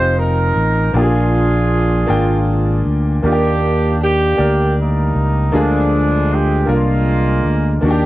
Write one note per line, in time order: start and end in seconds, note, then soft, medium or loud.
0.00 0.51 F1 medium
0.00 0.94 C4 medium
0.00 0.94 D#4 medium
0.00 0.94 F4 medium
0.00 0.81 G4 medium
0.00 0.94 G#4 medium
0.00 0.13 C5 medium
0.18 0.90 D#4 medium
0.18 0.94 A#4 medium
0.56 0.90 A1 medium
0.93 2.04 A#1 medium
0.93 2.04 A#2 soft
0.93 1.95 A#3 medium
0.93 1.95 D4 medium
0.93 2.81 D4 medium
0.93 2.81 F4 medium
0.93 1.96 F4 medium
0.93 1.01 G4 medium
0.93 2.85 G#4 medium
1.03 1.99 G#4 medium
2.06 2.81 G#1 medium
2.06 3.09 A#3 medium
2.06 3.09 D4 medium
2.06 3.10 F4 medium
2.06 3.11 G5 medium
2.85 3.20 D2 medium
3.23 4.34 D#2 medium
3.23 4.34 D#3 soft
3.23 4.24 A#3 medium
3.23 4.01 A#3 medium
3.23 4.25 D4 medium
3.23 4.01 D4 medium
3.23 3.30 F4 medium
3.23 3.96 G4 loud
3.32 4.29 G4 medium
4.02 4.77 A#3 medium
4.02 5.11 D4 medium
4.02 4.74 G4 medium
4.37 5.11 D2 medium
4.37 5.39 A#3 soft
4.37 5.39 G4 medium
4.37 5.40 A#4 medium
4.37 5.39 D5 soft
4.79 5.50 G3 medium
4.79 5.50 A#3 medium
4.79 5.54 D#4 medium
5.15 5.50 C#2 medium
5.52 6.64 D2 medium
5.52 6.63 D3 soft
5.52 6.64 F3 medium
5.52 6.64 G#3 medium
5.52 6.54 A#3 medium
5.52 6.54 D4 medium
5.52 6.54 F4 medium
5.52 6.55 G#4 medium
5.57 6.31 D4 medium
6.33 6.69 G4 medium
6.66 7.40 C2 medium
6.66 7.68 A#3 medium
6.66 7.68 D4 soft
6.66 7.69 F4 medium
6.66 7.69 A#4 medium
6.71 7.80 G#3 medium
6.71 7.79 A#3 medium
6.71 7.56 F4 medium
7.45 7.79 D2 medium
7.81 8.06 D#2 medium
7.81 8.06 D#3 soft
7.81 8.06 A#3 medium
7.81 8.06 D4 medium
7.81 7.89 F#4 medium
7.85 8.06 D4 medium
7.85 8.06 G4 loud
7.91 8.06 G4 medium